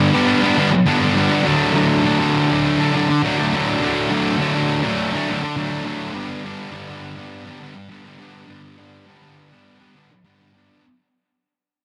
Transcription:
Already playing: distorted electric guitar G2 D3 G3 B3 D4
0.12 distorted electric guitar G3 B3 D4
0.42 distorted electric guitar G3 B3 D4
0.57 distorted electric guitar D3 G3 B3 D4
0.71 muted distorted electric guitar stroke
0.87 distorted electric guitar G2 D3 G3 B3 D4
1.01 distorted electric guitar B3 D4
1.05 distorted electric guitar G3
1.14 distorted electric guitar D3 G3 B3
1.18 distorted electric guitar D4
1.44 distorted electric guitar D3 F#3 A3 D4
1.73 distorted electric guitar D3 F#3 A3 D4
2.02 distorted electric guitar D3 F#3 A3 D4
2.19 distorted electric guitar F#3 A3 D4
2.48 distorted electric guitar A3 D4
2.52 distorted electric guitar F#3
2.78 distorted electric guitar F#3 A3 D4
2.93 distorted electric guitar D3 F#3 A3 D4
3.09 muted distorted electric guitar stroke
3.23 distorted electric guitar D3 F#3 A3 D4
3.38 distorted electric guitar F#3 A3 D4
3.53 distorted electric guitar D3 F#3 A3 D4
3.80 distorted electric guitar D3 F#3 A3 D4
4.10 distorted electric guitar D3 F#3 A3 D4
4.39 distorted electric guitar D3 F#3 A3 D4
4.54 distorted electric guitar F#3 A3 D4
4.83 distorted electric guitar A3 D4
4.88 distorted electric guitar F#3
5.13 distorted electric guitar F#3 A3 D4
5.29 distorted electric guitar D3 F#3 A3 D4
5.43 muted distorted electric guitar stroke
5.56 distorted electric guitar D3 F#3 A3
5.61 distorted electric guitar D4
5.70 distorted electric guitar F#3 A3 D4
5.84 distorted electric guitar D3 F#3 A3 D4
6.12 distorted electric guitar G2 D3 G3 B3 D4
6.43 distorted electric guitar D3 G3 B3 D4
6.71 distorted electric guitar G2 D3 G3 B3 D4
6.87 distorted electric guitar G3 B3 D4
7.16 distorted electric guitar B3 D4
7.20 distorted electric guitar G3
7.46 distorted electric guitar B3 D4
7.50 distorted electric guitar G3
7.59 distorted electric guitar D3 G3 B3 D4
7.75 muted distorted electric guitar stroke
7.89 distorted electric guitar G2 D3 G3 B3 D4
8.04 distorted electric guitar G3 B3 D4
8.19 distorted electric guitar D3 G3 B3 D4
8.47 distorted electric guitar G2 D3 G3 B3 D4
8.77 distorted electric guitar D3 G3 B3 D4
9.06 distorted electric guitar G2 D3 G3 B3 D4
9.20 distorted electric guitar B3 D4
9.24 distorted electric guitar G3
9.50 distorted electric guitar B3 D4
9.54 distorted electric guitar G3
9.79 distorted electric guitar G3 B3 D4
9.94 distorted electric guitar D3 G3 B3 D4
10.10 muted distorted electric guitar stroke
10.24 distorted electric guitar G2 D3 G3 B3 D4
10.39 distorted electric guitar G3 B3 D4
10.54 distorted electric guitar D3 G3 B3 D4

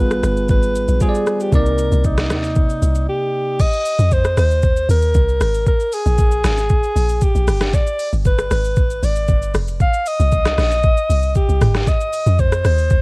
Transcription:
Already playing: log drum bass G#1, tine electric piano G3 B3 F4 G#4
0.00 alto saxophone B4
0.11 cross-stick, shaker
0.23 log drum bass G1, cross-stick, shaker
0.37 shaker
0.49 log drum bass G#1, alto saxophone B4, kick, shaker
0.63 shaker
0.76 shaker
0.88 log drum bass A#1, shaker
1.01 tine electric piano G3 F4 G#4 C5, alto saxophone G#4, kick, shaker
1.09 tine electric piano D5
1.15 shaker
1.27 cross-stick, shaker
1.40 alto saxophone G4, shaker
1.52 log drum bass C2, tine electric piano C3 A#3 D#4 D5, alto saxophone A#4, kick, shaker
1.66 shaker
1.78 shaker
1.92 log drum bass C2, shaker
2.04 alto saxophone D#4, kick, shaker
2.18 cross-stick, snare, shaker
2.30 log drum bass D#2, cross-stick, snare, shaker
2.44 shaker
2.56 kick, shaker
2.70 shaker
2.82 log drum bass C2, shaker
2.95 shaker
3.09 alto saxophone G4
3.60 alto saxophone D#5, kick, crash, shaker
3.73 shaker
3.85 open hi-hat, shaker
3.99 log drum bass F2, shaker
4.11 alto saxophone C5, kick, shaker
4.25 cross-stick, shaker
4.37 log drum bass D#2, alto saxophone C5, cross-stick, open hi-hat, shaker
4.51 shaker
4.63 kick, shaker
4.77 shaker
4.89 log drum bass D#2, alto saxophone A#4, open hi-hat, shaker
5.02 shaker
5.15 log drum bass C2, kick, shaker
5.29 shaker
5.41 log drum bass G#1, cross-stick, open hi-hat, shaker
5.54 shaker
5.67 alto saxophone A#4, kick, shaker
5.80 shaker
5.92 alto saxophone G#4, open hi-hat, shaker
6.06 log drum bass A#1, shaker
6.18 kick, shaker
6.32 shaker
6.44 log drum bass G#1, cross-stick, snare, open hi-hat, shaker
6.58 shaker
6.69 kick, shaker
6.83 shaker
6.96 log drum bass A#1, open hi-hat, shaker
7.09 shaker
7.21 alto saxophone G4, kick, shaker
7.35 log drum bass A#1, shaker
7.48 log drum bass G1, cross-stick, open hi-hat, shaker
7.61 cross-stick, snare, shaker
7.73 alto saxophone D5, kick, shaker
7.87 shaker
7.99 open hi-hat, shaker
8.13 log drum bass G1, shaker
8.25 alto saxophone B4, kick, shaker
8.38 cross-stick, shaker
8.51 log drum bass G#1, alto saxophone B4, cross-stick, open hi-hat, shaker
8.64 shaker
8.76 kick, shaker
8.90 shaker
9.03 log drum bass G#1, alto saxophone D5, open hi-hat, shaker
9.16 shaker
9.28 log drum bass G1, kick, shaker
9.42 shaker
9.55 log drum bass F1, cross-stick, open hi-hat, shaker
9.68 shaker
9.80 alto saxophone F5, kick, shaker
9.94 shaker
10.06 alto saxophone D#5, open hi-hat, shaker
10.20 log drum bass C2, shaker
10.32 kick, shaker
10.45 cross-stick, snare, shaker
10.58 log drum bass A#1, cross-stick, snare, open hi-hat, shaker
10.71 shaker
10.83 kick, shaker
10.97 shaker
11.10 log drum bass C2, open hi-hat, shaker
11.23 shaker
11.35 alto saxophone G4, kick, shaker
11.49 log drum bass C2, shaker
11.61 log drum bass G1, cross-stick, mid tom, open hi-hat, shaker
11.75 cross-stick, snare, shaker
11.87 alto saxophone D#5, kick, shaker
12.01 shaker
12.13 open hi-hat, shaker
12.27 log drum bass F2, shaker
12.39 alto saxophone C5, kick, shaker
12.52 cross-stick, shaker
12.65 log drum bass D#2, alto saxophone C5, cross-stick, open hi-hat, shaker
12.78 shaker
12.90 kick, shaker

